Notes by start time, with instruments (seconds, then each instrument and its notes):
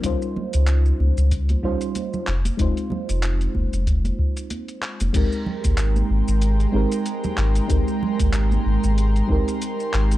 0.02 sub bass C#2, fm electric piano G3 C#4 D#4 F4, kick, closed hi-hat, shaker
0.06 fm electric piano C5
0.22 shaker
0.36 high conga, low conga
0.53 sub bass C#2, closed hi-hat, shaker
0.67 clap, closed hi-hat, shaker
0.85 shaker
1.00 sub bass C#2, high conga
1.18 sub bass C#2, shaker
1.31 kick, closed hi-hat, shaker
1.49 closed hi-hat, high conga, shaker
1.63 sub bass C#2, fm electric piano G3 C#4 D#4 F4 C5, kick
1.81 closed hi-hat, shaker
1.95 closed hi-hat, high conga, shaker
2.13 low conga, shaker
2.27 sub bass F1, clap
2.45 closed hi-hat, high conga, shaker
2.57 sub bass F1, fm electric piano G#3 C4 D#4 F4, kick, closed hi-hat, shaker
2.62 fm electric piano C5
2.77 closed hi-hat, shaker
2.90 high conga, low conga
3.09 sub bass F1, closed hi-hat, shaker
3.23 clap, closed hi-hat, shaker
3.41 closed hi-hat, shaker
3.55 sub bass F1, kick, high conga
3.73 sub bass F1, closed hi-hat, shaker
3.87 kick, closed hi-hat, shaker
4.05 closed hi-hat, high conga, shaker
4.19 kick
4.37 closed hi-hat, shaker
4.50 closed hi-hat, high conga, shaker
4.68 closed hi-hat, shaker
4.82 clap
5.00 sub bass F1, closed hi-hat, high conga, shaker
5.13 sub bass G#1, fm electric piano G#3 C4 D#4 G4, analog synth pad G#3 G5 A#5 C6, kick, closed hi-hat, crash, shaker
5.17 fm electric piano A#4
5.32 shaker
5.46 low conga
5.64 sub bass G#1, kick, closed hi-hat, high conga, shaker
5.78 clap, closed hi-hat, shaker
5.96 high conga, shaker
6.10 sub bass G#1
6.28 sub bass G#1, shaker
6.42 closed hi-hat, shaker
6.60 closed hi-hat, shaker
6.72 sub bass G#1, fm electric piano G#3 C4 D#4 G4
6.76 fm electric piano A#4
6.92 closed hi-hat, shaker
7.06 closed hi-hat, shaker
7.24 high conga, low conga, shaker
7.37 sub bass G#1, clap
7.55 closed hi-hat, shaker
7.67 sub bass G#1, fm electric piano G#3 C4 D#4 G4, kick, closed hi-hat, shaker
7.71 fm electric piano A#4
7.88 shaker
8.03 low conga
8.19 sub bass G#1, kick, closed hi-hat, high conga, shaker
8.33 clap, closed hi-hat, shaker
8.51 high conga, shaker
8.66 sub bass G#1
8.84 sub bass G#1, high conga, shaker
8.98 closed hi-hat, shaker
9.16 closed hi-hat, shaker
9.28 sub bass G#1, fm electric piano G#3 C4 D#4 G4, kick
9.32 fm electric piano A#4
9.48 closed hi-hat, shaker
9.62 closed hi-hat, shaker
9.80 shaker
9.93 sub bass G#1, clap
10.11 closed hi-hat, shaker